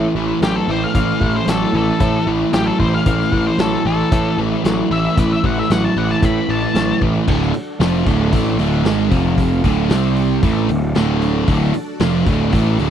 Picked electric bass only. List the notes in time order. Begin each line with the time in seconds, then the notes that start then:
0.15 A1
0.42 A1
0.68 A1
0.95 A1
1.21 A1
1.47 A1
1.74 A1
2.01 A2
2.27 A1
2.54 A1
2.80 A1
3.06 A1
3.32 A1
3.59 A1
3.85 A1
4.12 A2
4.38 A1
4.65 A1
4.91 A1
5.17 A1
5.44 A1
5.70 A1
5.97 A1
6.22 A2
6.49 A1
6.75 A1
7.02 A1
7.28 D1
7.54 muted picked electric bass stroke
7.80 F1
8.06 D1
8.33 A1
8.58 D1
8.85 G#1
9.11 F1
9.64 D1
9.90 C2
10.43 A1
10.69 D1
10.96 D1
11.48 D1
11.74 muted picked electric bass stroke
12.01 F1
12.27 D1
12.53 A1
12.80 D1